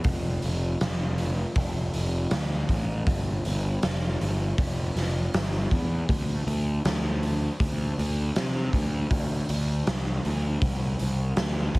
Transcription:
0.04 F1, kick, open hi-hat
0.42 F1, open hi-hat
0.81 F1, snare, open hi-hat
1.18 open hi-hat
1.56 F1, kick, open hi-hat
1.94 F1, open hi-hat
2.31 D2, snare, open hi-hat
2.69 A1, kick, open hi-hat
3.07 G1, kick, open hi-hat
3.45 G1, open hi-hat
3.83 F1, snare, open hi-hat
4.21 G1, open hi-hat
4.58 F1, kick, open hi-hat
4.96 F1, snare, open hi-hat
5.34 G1, snare, open hi-hat
5.71 E2, kick, open hi-hat
6.09 D2, kick, open hi-hat
6.47 D2, open hi-hat
6.85 D2, snare, open hi-hat
7.23 open hi-hat
7.60 D2, kick, open hi-hat
7.98 D2, open hi-hat
8.36 C3, snare, open hi-hat
8.73 D2, kick, open hi-hat
9.11 D2, kick, open hi-hat
9.49 D2, open hi-hat
9.87 C2, snare, open hi-hat
10.25 D2, open hi-hat
10.62 C2, kick, open hi-hat
10.99 C2, open hi-hat
11.37 D2, snare, open hi-hat
11.74 D2, kick, open hi-hat

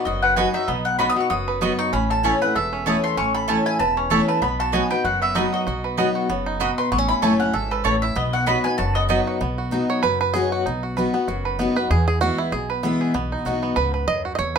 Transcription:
Already playing: B3
0.05 F#1 F#2 F#4 D#5
0.22 B4 F#5
0.36 F#3 B3 D#4 F#4 D#5 G#5 B5
0.54 D#4 F#4 E5
0.68 B1 B2 B3 D#5
0.85 F#5
0.99 F#3 B3 D#4 F#4 D#5 B5
1.10 D#6
1.16 B3 D#4 F#4
1.20 C#6
1.30 F#1 F#2 F#4 D#6
1.48 B4
1.61 F#3 B3 D#4 F#4 D#5 B5
1.79 D#4 C#6
1.93 A1 A2 C#4 B5
2.10 A4 A5
2.23 E3 A3 C#4 E4 C#5 G#5 A5
2.41 C#4 E4 B4 F#5
2.55 E1 E2 A4 E5
2.73 C#4
2.86 E3 A3 C#4 E4 C#5 A5 D#6
3.04 A4 C6
3.17 A1 A2 C#4 C#6
3.35 A4 B5
3.48 E3 A3 C#4 E4 C#5 A5
3.66 E4 G#5
3.79 E1 E2 B4 A5
3.97 C#4 C#5
4.10 E3 A3 C#4 E4 A4 C#5 E5 A5
4.28 B4 A5
4.42 B1 B2 B3 B5
4.60 F#4 A5
4.72 F#3 B3 D#4 F#4 D#5 G#5 B5
4.90 D#4 F#4 B4 G5
5.04 F#1 F#2 F#4 F#5
5.22 B3 E5
5.35 F#3 B3 D#4 F#4 D#5 B5
5.53 F#4 D#5
5.67 B1 B2 F#4
5.84 B4
5.97 F#3 B3 D#4 F#4 D#5 B5
6.15 F#4
6.29 F#1 C#3 B3
6.46 D#4
6.60 B2 B3 F#4 D#5 B5 D#6
6.78 B4 C6
6.92 A1 A2 B3 C#6
6.98 C#4
7.08 E4 B5
7.22 F#1 E3 A3 C#4 E4 A4 C#5 G#5 A5
7.40 C#4 E4 F#5
7.53 G#1 G#2 A4 E5
7.71 A4 B4
7.84 A1 A2 A3 E4 A4 C#5 A5
8.02 E4 E5
8.16 B1 B2 B3 D#5
8.33 F#4 F#5
8.46 F#3 B3 D#4 F#4 D#5 B5
8.64 D#4 F#4 B4 G#5
8.78 F#1 F#2 F#4 A5
8.95 B3 D#5
9.09 F#3 B3 D#4 F#4 D#5 B5
9.27 F#4
9.41 B1 B2 B3
9.58 F#4
9.71 F#3 B3 D#4 F#4
9.90 C#5
10.03 F#1 F#2 B4
10.21 B4
10.34 F#3 B3 D#4 F#4 G#4
10.52 F#4
10.66 B1 B2 D#4
10.83 F#4
10.97 F#3 B3 D#4 F#4 B4
11.14 B3 D#4 F#4
11.28 F#1 F#2 F#4
11.45 B4
11.59 F#3 B3 D#4 F#4
11.76 D#4 F#4 B4
11.90 E2 G#4
12.08 G#4
12.21 E3 G#3 B3 E4 F#4
12.38 E4
12.52 B1 B2 G#4
12.70 B4
12.83 E3 G#3 B3 E4
13.01 G#4
13.14 B1 B2 B3
13.32 D#4
13.45 B1 F#3 B3 D#4 F#4
13.63 B3
13.76 C#2 G#2 B4
13.94 B4
14.07 D#2 F#2 D#5
14.25 F#4
14.35 E2 C#5 D#5

